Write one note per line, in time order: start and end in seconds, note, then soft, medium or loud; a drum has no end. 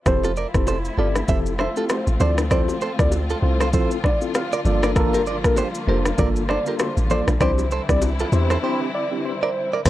0.06 0.46 F1 loud
0.06 7.37 F3 medium
0.06 4.61 A3 medium
0.06 0.29 C4 medium
0.06 4.61 C4 medium
0.06 0.29 E4 medium
0.06 2.18 E4 medium
0.06 7.37 F4 medium
0.06 0.29 G4 medium
0.06 0.29 A4 loud
0.06 0.33 C5 loud
0.06 kick loud
0.06 cross-stick loud
0.06 low conga medium
0.06 shaker medium
0.23 0.32 F4 medium
0.23 0.31 A4 medium
0.23 high bongo medium
0.23 shaker medium
0.37 0.47 A#4 medium
0.37 0.46 D5 medium
0.37 shaker soft
0.54 0.90 F1 loud
0.54 0.74 C4 medium
0.54 0.74 E4 medium
0.54 0.74 G4 medium
0.54 0.75 A4 medium
0.54 0.66 C5 medium
0.54 kick loud
0.54 cross-stick medium
0.54 shaker medium
0.67 0.78 A4 medium
0.67 0.77 C5 medium
0.67 high bongo medium
0.67 shaker medium
0.85 shaker medium
0.98 1.23 G1 medium
0.98 1.21 C4 medium
0.98 1.21 E4 medium
0.98 1.08 F4 medium
0.98 1.21 G4 medium
0.98 1.21 A4 medium
0.98 1.07 A4 medium
0.98 1.14 D5 medium
1.15 cross-stick medium
1.15 low bongo medium
1.15 shaker medium
1.28 1.68 F1 loud
1.28 1.51 C4 medium
1.28 1.51 E4 medium
1.28 1.52 G4 medium
1.28 1.52 A4 loud
1.28 1.39 C5 medium
1.28 1.38 E5 medium
1.28 kick medium
1.28 low conga medium
1.28 shaker medium
1.46 shaker medium
1.59 1.69 A4 medium
1.59 1.69 C5 medium
1.59 1.75 E5 medium
1.59 cross-stick medium
1.59 low bongo medium
1.76 1.97 C4 medium
1.76 1.97 E4 medium
1.76 1.84 F4 medium
1.76 1.97 G4 medium
1.76 1.97 A4 medium
1.76 1.84 A4 medium
1.76 shaker soft
1.89 2.05 C5 medium
1.89 cross-stick loud
1.89 high bongo medium
1.89 shaker medium
2.07 2.18 A1 medium
2.07 shaker medium
2.20 2.71 D2 loud
2.20 9.82 D3 medium
2.20 2.43 C4 medium
2.20 2.43 E4 medium
2.20 2.43 F4 medium
2.20 2.43 A4 medium
2.20 2.30 A4 medium
2.20 2.30 C5 medium
2.20 2.36 D5 medium
2.20 low conga medium
2.20 shaker medium
2.38 cross-stick loud
2.38 low bongo medium
2.38 shaker medium
2.51 2.74 C4 medium
2.51 2.74 E4 medium
2.51 2.74 F4 medium
2.51 2.74 A4 loud
2.51 2.61 A4 medium
2.51 2.77 C5 loud
2.51 2.60 D5 medium
2.51 kick loud
2.51 cross-stick medium
2.51 low conga medium
2.51 shaker medium
2.68 high bongo medium
2.68 shaker medium
2.81 2.92 A4 medium
2.81 2.91 C5 medium
2.81 shaker soft
2.99 3.35 D2 medium
2.99 3.19 C4 medium
2.99 3.19 E4 medium
2.99 3.19 F4 medium
2.99 3.19 A4 medium
2.99 3.11 D5 medium
2.99 kick loud
2.99 cross-stick loud
2.99 shaker medium
3.12 high bongo medium
3.12 shaker medium
3.30 3.38 F4 medium
3.30 3.37 A4 medium
3.30 shaker medium
3.42 3.82 C2 medium
3.42 3.66 C4 medium
3.42 3.66 E4 medium
3.42 3.66 F4 medium
3.42 3.66 A4 medium
3.42 3.58 C5 medium
3.60 3.68 A4 medium
3.60 3.68 C5 medium
3.60 cross-stick medium
3.60 low bongo medium
3.60 shaker medium
3.73 3.96 C4 medium
3.73 3.96 E4 medium
3.73 3.96 F4 medium
3.73 3.97 A4 loud
3.73 3.90 A4 medium
3.73 3.90 C5 medium
3.73 kick loud
3.73 low conga medium
3.73 shaker medium
3.91 shaker medium
4.04 4.20 D5 medium
4.04 kick medium
4.04 cross-stick medium
4.04 low bongo medium
4.21 4.42 C4 medium
4.21 4.42 E4 medium
4.21 4.42 F4 medium
4.21 4.42 A4 medium
4.21 shaker soft
4.34 4.50 F5 medium
4.34 cross-stick loud
4.34 high bongo medium
4.34 shaker medium
4.53 4.60 A#4 medium
4.53 4.60 D5 medium
4.53 shaker medium
4.65 5.66 G1 loud
4.65 9.82 G3 medium
4.65 4.94 A#3 medium
4.65 7.38 A#3 medium
4.65 4.94 D4 medium
4.65 4.94 F4 medium
4.65 4.94 A4 loud
4.65 4.81 D5 medium
4.65 low conga medium
4.65 shaker medium
4.83 4.91 A#4 medium
4.83 4.90 D5 medium
4.83 cross-stick loud
4.83 low bongo medium
4.83 shaker medium
4.96 5.19 A#3 medium
4.96 5.19 D4 medium
4.96 5.19 F4 medium
4.96 5.19 A4 loud
4.96 5.22 A#4 loud
4.96 kick loud
4.96 cross-stick loud
4.96 low conga medium
4.96 shaker medium
5.13 5.21 G4 medium
5.13 5.21 A#4 medium
5.13 high bongo medium
5.13 shaker medium
5.26 5.37 A#4 medium
5.26 5.36 D5 medium
5.26 shaker soft
5.44 5.64 A#3 medium
5.44 5.64 D4 medium
5.44 5.64 F4 medium
5.44 5.64 A4 medium
5.44 5.56 A#4 medium
5.44 kick loud
5.44 cross-stick loud
5.44 shaker medium
5.56 5.67 G4 medium
5.56 5.67 C5 medium
5.56 high bongo medium
5.56 shaker medium
5.75 shaker medium
5.87 6.13 F1 loud
5.87 6.10 A#3 medium
5.87 6.11 D4 medium
5.87 6.11 F4 medium
5.87 5.98 G4 medium
5.87 6.11 A4 medium
5.87 5.97 A#4 medium
5.87 6.03 C5 medium
6.05 cross-stick loud
6.05 low bongo medium
6.05 shaker medium
6.18 6.58 G1 loud
6.18 6.41 A#3 medium
6.18 6.41 D4 medium
6.18 6.41 F4 medium
6.18 6.41 A4 loud
6.18 6.29 A#4 medium
6.18 6.28 D5 medium
6.18 kick loud
6.18 low conga medium
6.18 shaker medium
6.36 shaker medium
6.49 6.59 A4 medium
6.49 6.59 C5 medium
6.49 6.64 D5 medium
6.49 cross-stick medium
6.49 low bongo medium
6.66 6.86 A#3 medium
6.66 6.87 D4 medium
6.66 6.87 F4 medium
6.66 6.74 G4 medium
6.66 6.87 A4 medium
6.66 6.74 A#4 medium
6.66 shaker soft
6.79 6.95 C5 medium
6.79 cross-stick loud
6.79 high bongo medium
6.79 shaker medium
6.97 7.22 A1 medium
6.97 shaker medium
7.10 7.33 A#3 medium
7.10 7.33 D4 medium
7.10 7.33 F4 medium
7.10 7.33 A4 medium
7.10 7.21 A4 medium
7.10 7.20 C5 medium
7.10 7.26 D5 medium
7.10 low conga medium
7.10 shaker medium
7.28 7.38 A#1 medium
7.28 cross-stick loud
7.28 low bongo medium
7.28 shaker medium
7.40 7.80 C2 loud
7.40 9.83 E3 medium
7.40 7.64 C4 loud
7.40 9.83 C4 medium
7.40 7.64 D4 medium
7.40 9.83 E4 medium
7.40 7.64 E4 medium
7.40 7.64 G4 loud
7.40 7.51 G4 medium
7.40 7.67 C5 loud
7.40 7.50 D5 medium
7.40 kick loud
7.40 cross-stick loud
7.40 low conga medium
7.40 shaker medium
7.58 high bongo medium
7.58 shaker medium
7.71 7.82 A4 medium
7.71 7.81 C5 medium
7.71 shaker soft
7.89 8.25 C2 medium
7.89 8.09 C4 medium
7.89 8.09 D4 medium
7.89 8.09 E4 medium
7.89 8.09 G4 medium
7.89 8.01 D5 medium
7.89 kick loud
7.89 cross-stick loud
7.89 shaker medium
8.02 high bongo medium
8.02 shaker medium
8.19 8.27 F4 medium
8.19 8.27 A4 medium
8.19 shaker medium
8.32 8.58 E2 loud
8.32 8.55 C4 medium
8.32 8.56 D4 medium
8.32 8.56 E4 medium
8.32 8.56 G4 medium
8.32 8.48 C5 medium
8.32 shaker medium
8.50 8.58 A4 medium
8.50 8.57 C5 medium
8.50 cross-stick medium
8.50 low bongo medium
8.50 shaker medium
8.63 8.86 C4 medium
8.63 8.86 D4 medium
8.63 8.86 E4 medium
8.63 8.86 G4 loud
8.63 8.80 G4 medium
8.63 8.79 C5 medium
8.95 9.09 D5 medium
9.11 9.32 C4 medium
9.11 9.32 D4 medium
9.11 9.32 E4 medium
9.11 9.32 G4 medium
9.25 9.70 C5 medium
9.43 9.50 A#4 medium
9.43 9.49 D5 medium
9.73 9.80 A#4 medium
9.73 9.80 D5 medium
9.85 9.90 F1 loud
9.85 9.90 C3 medium
9.85 9.90 E3 medium
9.85 9.90 F3 medium
9.85 9.90 A3 medium
9.85 9.90 C4 loud
9.85 9.90 E4 medium
9.85 9.90 G4 medium
9.85 9.90 A4 loud
9.85 9.90 C5 loud
9.85 kick loud
9.85 cross-stick loud
9.85 crash loud
9.85 low conga medium
9.85 shaker medium